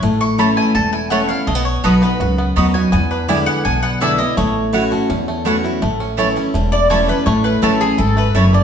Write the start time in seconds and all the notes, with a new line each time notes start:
0.02 A1 A2 A3
0.21 E4 C#6
0.38 E3 A3 C#4 E4 A4 C#5 A5 B5
0.57 A3 G#5
0.75 E1 E2 A4 A5
0.93 E4 G#5
1.10 E3 A3 C#4 E4 C#5 F#5 A5
1.29 C#4 E4 F5
1.47 B1 B2 A3 D#5
1.55 B3
1.65 C#5
1.83 B1 F#3 B3 D#4 F#4 A4 B4 D#5 B5
2.02 B3 D#4 F#4 B4
2.20 C#2 F#2 F#4
2.38 B3
2.56 D#2 F#3 B3 D#4 F#4 D#5 B5
2.74 D#4 F#4 G#5
2.92 E2 B3 G#5
3.11 D4 B4
3.28 D3 G#3 B3 E4 D5 G#5
3.46 B3 F#5
3.65 B1 B2 D4 G#5
3.83 B3 F#5
4.00 D3 G#3 B3 D4 E4 D5 E5 G#5
4.18 B3 E4 D#5
4.37 A1 A2 A3 C#5
4.73 E3 A3 C#4 E4 F#4 C#5 F#5
4.91 A3 C#4 F#4
5.10 E2 C#4
5.28 A3
5.45 E3 A3 C#4 E4 F#4 C#5 F#5
5.64 C#4 E4 F#4
5.82 A1 A2 A3
6.00 C#4
6.17 E3 A3 C#4 E4 C#5 A5
6.36 C#4 E4
6.54 E1 E2 A3
6.72 E4 D5
6.90 E3 A3 C#4 E4 A4 C#5 A5
7.08 A3 C#4 E4 B4
7.26 A1 A2 A3 C#5
7.44 C#4 B4
7.62 A1 E3 A3 C#4 E4 A4 C#5 A5
7.81 C#4 E4 G#4 A4
7.98 G#1 G#2 E4 A4
8.17 A3 B4
8.34 F#1 F#2 A3 E4 C#5 A5
8.53 A3 D5